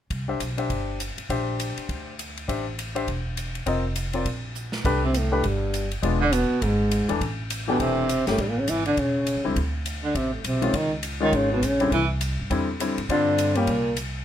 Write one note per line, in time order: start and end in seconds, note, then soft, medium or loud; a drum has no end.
0.10 0.38 C2 medium
0.10 kick soft
0.10 ride soft
0.28 0.39 D4 soft
0.28 0.39 G4 soft
0.28 0.40 C5 soft
0.28 0.40 E5 soft
0.40 0.68 B1 medium
0.40 hi-hat pedal soft
0.40 ride soft
0.57 0.97 D4 soft
0.57 0.97 G4 soft
0.57 0.97 C5 soft
0.57 0.98 E5 soft
0.57 ride soft
0.70 1.14 G1 medium
0.70 kick soft
0.70 ride soft
1.00 hi-hat pedal medium
1.00 ride soft
1.17 muted upright bass stroke soft
1.17 ride soft
1.29 1.74 A#1 medium
1.29 2.11 D4 soft
1.29 2.12 G4 soft
1.29 2.12 C5 soft
1.29 2.12 E5 medium
1.29 kick soft
1.29 ride soft
1.60 hi-hat pedal soft
1.60 ride medium
1.77 muted upright bass stroke soft
1.77 ride soft
1.89 2.45 D2 medium
1.89 kick soft
1.89 ride soft
2.19 hi-hat pedal soft
2.19 ride soft
2.37 ride soft
2.48 3.05 A1 medium
2.48 2.64 D4 soft
2.48 2.64 G4 soft
2.48 2.64 C5 soft
2.48 2.64 E5 soft
2.48 kick soft
2.48 ride soft
2.79 hi-hat pedal soft
2.79 ride soft
2.95 3.06 D4 soft
2.95 3.06 G4 soft
2.95 3.06 C5 soft
2.95 3.06 E5 medium
2.95 ride soft
3.07 3.63 E1 medium
3.07 kick soft
3.07 ride soft
3.37 hi-hat pedal soft
3.37 ride medium
3.55 ride soft
3.66 4.22 F1 medium
3.66 3.82 C4 medium
3.66 3.82 F4 soft
3.66 3.83 A#4 soft
3.66 3.83 D#5 medium
3.66 kick soft
3.66 ride soft
3.96 hi-hat pedal medium
3.96 ride medium
4.13 4.24 C4 soft
4.13 4.25 F4 soft
4.13 4.25 A#4 soft
4.13 4.25 D5 soft
4.13 ride soft
4.25 4.82 A#1 medium
4.25 kick soft
4.25 ride soft
4.55 hi-hat pedal soft
4.72 snare soft
4.85 5.41 C2 medium
4.85 5.01 A3 medium
4.85 5.01 D4 medium
4.85 5.01 G4 medium
4.85 5.01 B4 medium
4.85 kick medium
4.85 ride medium
5.04 5.16 C3 medium
5.04 5.19 C4 medium
5.14 5.46 A2 medium
5.14 5.48 A3 medium
5.14 hi-hat pedal medium
5.14 ride medium
5.32 5.42 A3 medium
5.32 5.43 D4 medium
5.32 5.43 G4 medium
5.32 5.43 B4 medium
5.43 6.00 G1 medium
5.43 5.91 G2 medium
5.43 5.92 G3 medium
5.43 kick soft
5.43 ride soft
5.74 hi-hat pedal medium
5.74 ride medium
5.91 ride soft
6.02 6.47 E1 medium
6.02 6.19 G#3 medium
6.02 6.19 B3 soft
6.02 6.19 D4 medium
6.02 6.19 F4 medium
6.02 kick soft
6.02 ride soft
6.20 6.34 D3 medium
6.20 6.35 D4 medium
6.32 6.64 B2 medium
6.32 6.66 B3 medium
6.32 hi-hat pedal soft
6.32 ride medium
6.62 6.98 G#1 medium
6.62 7.09 G#2 medium
6.62 7.10 G#3 medium
6.62 kick soft
6.62 ride soft
6.91 hi-hat pedal soft
6.91 ride medium
7.02 7.10 D2 soft
7.09 7.20 E2 medium
7.09 7.19 E3 medium
7.09 7.20 A3 soft
7.09 7.20 D4 medium
7.09 7.20 A4 medium
7.09 ride soft
7.21 7.77 A1 medium
7.21 kick soft
7.21 ride soft
7.50 hi-hat pedal soft
7.50 ride medium
7.68 7.81 B2 medium
7.68 8.07 E3 medium
7.68 8.07 A3 medium
7.68 7.84 B3 medium
7.68 8.07 D4 medium
7.68 8.07 G4 medium
7.80 8.23 E1 medium
7.80 8.27 C3 medium
7.80 8.28 C4 medium
7.80 kick soft
7.80 ride soft
8.09 hi-hat pedal medium
8.09 ride soft
8.27 8.38 G1 medium
8.27 8.41 A2 medium
8.27 8.37 G3 soft
8.27 8.42 A3 medium
8.27 8.37 A#3 soft
8.27 8.38 C#4 soft
8.27 8.38 G4 medium
8.27 snare soft
8.27 ride soft
8.38 8.66 A1 medium
8.38 8.50 G2 soft
8.38 8.51 G3 medium
8.38 kick soft
8.38 ride soft
8.49 8.61 A#2 medium
8.49 8.62 A#3 medium
8.60 8.71 C#3 medium
8.60 8.71 C#4 medium
8.68 8.95 G#1 medium
8.68 8.85 E3 medium
8.68 8.86 E4 medium
8.68 hi-hat pedal medium
8.68 ride medium
8.85 9.00 D3 medium
8.85 9.01 D4 medium
8.85 ride soft
8.97 9.34 E1 medium
8.97 9.45 C#3 medium
8.97 9.45 C#4 medium
8.97 kick soft
8.97 ride soft
9.27 hi-hat pedal soft
9.27 ride medium
9.37 9.46 A#1 soft
9.44 9.55 C#2 medium
9.44 9.55 D3 soft
9.44 9.55 G3 soft
9.44 9.55 C4 soft
9.44 9.55 E4 medium
9.56 10.12 D2 medium
9.56 kick soft
9.56 ride soft
9.86 hi-hat pedal soft
9.86 ride medium
10.04 10.17 D3 medium
10.04 10.18 D4 medium
10.15 10.42 A1 medium
10.15 10.33 C3 medium
10.15 10.33 C4 medium
10.15 kick soft
10.15 ride soft
10.34 10.47 A2 soft
10.34 10.47 A3 soft
10.44 10.72 B1 medium
10.44 10.77 C3 medium
10.44 10.77 C4 medium
10.44 hi-hat pedal soft
10.44 ride medium
10.61 10.72 D#3 soft
10.61 10.72 G#3 soft
10.61 10.72 C#4 soft
10.61 10.73 F4 medium
10.61 ride soft
10.73 11.29 C#2 medium
10.73 10.92 D#3 medium
10.73 10.92 D#4 medium
10.73 kick soft
10.73 ride medium
11.03 hi-hat pedal soft
11.03 ride medium
11.20 11.59 D#3 medium
11.20 11.36 D#3 medium
11.20 11.59 G#3 medium
11.20 11.60 C#4 medium
11.20 11.37 D#4 medium
11.20 11.60 F4 medium
11.33 11.60 G#1 medium
11.33 11.51 C#3 medium
11.33 11.52 C#4 medium
11.33 kick soft
11.33 ride soft
11.52 11.65 B2 medium
11.52 11.66 B3 medium
11.62 11.89 A#1 medium
11.62 11.92 C#3 medium
11.62 11.93 C#4 medium
11.62 hi-hat pedal medium
11.62 ride medium
11.80 11.90 D3 medium
11.80 11.90 G3 soft
11.80 11.91 C4 medium
11.80 11.91 E4 medium
11.80 ride soft
11.92 12.35 C2 medium
11.92 12.08 E3 medium
11.92 12.04 E4 medium
11.92 kick soft
11.92 ride soft
12.21 hi-hat pedal medium
12.21 ride medium
12.39 12.50 G2 medium
12.50 12.94 E2 medium
12.50 12.66 D3 medium
12.50 12.66 G3 soft
12.50 12.66 C4 soft
12.50 12.67 E4 medium
12.50 kick soft
12.50 ride soft
12.80 12.95 D3 soft
12.80 12.96 G3 soft
12.80 12.96 C4 soft
12.80 12.96 E4 medium
12.80 hi-hat pedal medium
12.80 ride medium
12.97 13.08 G#2 medium
12.97 ride soft
13.09 13.65 G2 medium
13.09 13.52 D3 medium
13.09 13.58 D3 medium
13.09 13.53 G3 soft
13.09 13.53 C4 medium
13.09 13.58 D4 medium
13.09 13.53 F4 medium
13.09 kick soft
13.09 ride soft
13.38 hi-hat pedal medium
13.38 ride medium
13.55 13.97 A#2 medium
13.55 13.66 G3 medium
13.55 13.97 A#3 medium
13.55 13.67 A#3 medium
13.55 13.67 C#4 medium
13.55 13.67 G4 medium
13.55 ride soft
13.67 14.23 C2 medium
13.67 kick soft
13.67 ride soft
13.96 hi-hat pedal soft
13.96 ride medium